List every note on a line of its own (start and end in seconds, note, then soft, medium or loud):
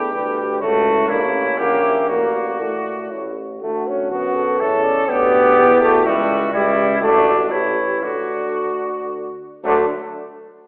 0.00 0.14 E2 medium
0.00 0.15 A3 medium
0.00 0.16 D4 medium
0.00 0.59 G4 medium
0.00 0.12 B4 soft
0.13 0.61 D2 medium
0.13 0.61 G3 medium
0.13 0.40 A4 medium
0.13 0.62 B4 medium
0.38 0.62 G4 medium
0.61 1.11 C#2 medium
0.61 1.11 A3 loud
0.61 1.10 F#4 medium
0.61 0.86 F#4 medium
0.61 1.60 C#5 medium
0.86 1.09 E4 medium
1.09 1.60 A1 medium
1.09 1.58 A#3 medium
1.09 1.21 D4 medium
1.09 1.59 E4 medium
1.34 2.11 C#4 medium
1.58 2.08 A#1 medium
1.58 2.08 A#3 loud
1.58 2.10 G4 medium
1.58 1.85 F#5 medium
1.83 2.08 E5 medium
2.08 2.59 A1 medium
2.08 2.62 A#3 loud
2.08 3.36 F#4 medium
2.08 3.12 F#4 medium
2.08 3.12 D5 medium
2.60 3.10 A2 medium
2.60 3.36 A3 medium
3.10 3.60 A1 medium
3.10 3.36 E4 soft
3.10 3.36 C#5 soft
3.61 4.13 D2 medium
3.61 3.89 A3 medium
3.61 4.08 F#4 soft
3.61 4.55 F#5 medium
3.87 4.10 C#4 medium
4.11 4.59 F#2 medium
4.11 4.59 B3 medium
4.11 4.62 F#4 medium
4.11 4.37 F#4 medium
4.35 5.08 A4 medium
4.60 4.94 E2 medium
4.60 5.10 C#4 medium
4.60 5.10 A4 medium
4.60 4.85 E5 medium
4.83 5.07 D5 medium
5.08 5.58 D2 medium
5.08 5.83 B3 loud
5.08 5.56 G4 medium
5.08 6.07 G4 medium
5.08 6.03 D5 medium
5.57 6.06 E2 medium
5.57 5.68 G4 medium
5.81 6.05 A3 loud
5.81 6.07 F#4 medium
6.05 6.52 C#2 medium
6.05 6.52 G3 loud
6.05 6.52 E4 medium
6.05 6.53 F#4 medium
6.05 6.52 E5 medium
6.53 6.98 C#2 medium
6.53 7.00 G3 loud
6.53 7.00 E4 medium
6.53 7.03 G4 medium
6.53 7.03 E5 medium
7.01 7.50 A1 medium
7.01 7.52 A3 loud
7.01 7.52 D4 medium
7.01 7.53 F#4 medium
7.01 7.52 D5 medium
7.50 8.05 A1 medium
7.50 8.05 E3 medium
7.50 8.04 E4 medium
7.50 8.03 G4 medium
7.50 8.05 C#5 medium
8.03 9.37 D2 medium
8.03 9.37 D3 medium
8.03 9.37 F#4 medium
8.03 9.35 F#4 medium
8.03 9.37 D5 soft
9.63 9.85 D2 medium
9.63 9.85 D3 loud
9.63 9.85 F#3 medium
9.63 9.85 A3 medium
9.63 9.85 D4 medium